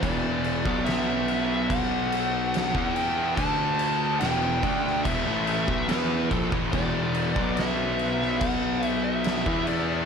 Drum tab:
CC |x-x-x-x-x-x-x-x-|x-x-x-x-x-x-x-x-|x-x-x-x-x-x-x-x-|
SD |----o-------o---|----o--o----o---|----o--o----o---|
BD |o--o----o----o--|o-----o-o--o--oo|o--o----o----o--|